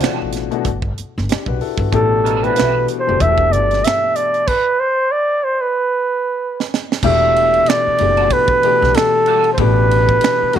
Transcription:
Already playing: upright piano B2 E3 A3 D4 F4 F#4
0.00 clean electric guitar F#3 C4 D4 A4, finger snap, snare, closed hi-hat
0.22 upright bass A1
0.32 snare, closed hi-hat
0.51 upright piano B2 E3 A3 D4 F#4, closed hi-hat
0.65 upright bass G1, kick, closed hi-hat
0.82 kick
0.98 muted upright bass stroke, closed hi-hat
1.18 upright bass G1, snare
1.29 upright piano D4 G4, finger snap, muted upright bass stroke, snare, closed hi-hat
1.46 upright bass B1, upright piano F#4 B4, kick
1.61 upright piano E4 A4, open hi-hat
1.78 upright bass G1, upright piano B3 F#4, kick
1.92 upright bass A1, upright piano B2 E3 A3 D4 G4, flugelhorn A4, kick, closed hi-hat
2.24 clean electric guitar F#3 B3 D#4 A#4, closed hi-hat
2.37 clean electric guitar G3 C4 E4 B4
2.43 upright piano B2 E3 A3 D4 E4, flugelhorn B4, closed hi-hat
2.51 upright piano F#4
2.56 upright bass B1, clean electric guitar G3 C4 E4 B4, finger snap, snare, closed hi-hat
2.88 closed hi-hat
3.00 flugelhorn C5
3.07 upright bass F#1, upright piano B2 E3 A3 D4 G4
3.20 upright bass E1, upright piano B2 E3 A3 D4 F#4, flugelhorn E5, kick, closed hi-hat
3.30 upright piano G4
3.38 kick
3.52 upright bass G1, flugelhorn D5, closed hi-hat
3.71 snare, closed hi-hat
3.84 flugelhorn E5, finger snap, snare, closed hi-hat
4.16 flugelhorn D5, closed hi-hat
4.34 closed hi-hat
4.47 flugelhorn B4, kick, crash
4.80 flugelhorn C5
5.11 flugelhorn D5
5.44 flugelhorn C5
5.61 flugelhorn B4
6.60 snare
6.74 snare
6.92 snare
7.03 upright bass E1, upright piano B2 E3 A3 D4 G4, flugelhorn E5, kick, crash
7.36 ride
7.54 ride
7.66 flugelhorn D5, finger snap, snare, ride
7.87 muted upright bass stroke
7.98 upright bass F#1, upright piano B2 E3 A3 D4 G4, ride
8.17 clean electric guitar G3 D4 F#4 A4, ride
8.30 flugelhorn B4, kick, ride
8.48 kick
8.63 upright piano B2 E3 A3 D4 G4, muted upright bass stroke, ride
8.82 upright bass B1, snare
8.94 flugelhorn A4, finger snap, muted clean electric guitar stroke, snare, ride
9.26 clean electric guitar G3 D4 F#4 A4, ride
9.44 ride
9.53 flugelhorn C5
9.58 upright bass A1, upright piano B2 E3 A3 D4 G4, flugelhorn B4, kick, ride
9.91 ride
10.09 kick
10.21 finger snap, snare, ride
10.42 muted upright bass stroke
10.53 upright bass B1, upright piano B2 E3 A3 D4 F#4, flugelhorn F#4, ride

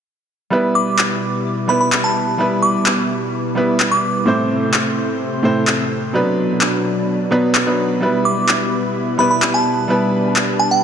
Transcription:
0.50 analog synth pad B2 G3 E4 B4, grand piano G3 B3 E4 B4
0.75 synth bell D6
0.99 clap
1.68 grand piano G3 B3 E4 B4, synth bell B5
1.81 synth bell B5
1.92 clap
2.04 synth bell A5
2.38 grand piano G3 B3 E4 B4
2.62 synth bell D6
2.86 clap
3.55 grand piano G3 B3 E4 B4
3.80 clap
3.92 synth bell D6
4.26 grand piano A2 A3 C4 E4 C5, analog synth pad C3 A3 C5
4.74 clap
5.43 grand piano A2 A3 C4 E4 C5
5.67 clap
6.13 grand piano B2 F#3 B3 D4 B4, analog synth pad B2 F#3 D4 B4
6.61 clap
7.31 grand piano B2 F#3 B3 D4 B4
7.55 clap
7.66 grand piano B2 F#3 B3 D4 B4
8.01 grand piano G3 B3 E4 B4, analog synth pad G3 E4
8.25 synth bell D6
8.49 clap
9.18 grand piano G3 B3 E4 B4, synth bell B5
9.31 synth bell B5
9.42 clap
9.54 synth bell A5
9.88 grand piano G3 B3 E4 B4, analog synth pad D4
10.36 clap
10.59 synth bell A5
10.71 synth bell G5

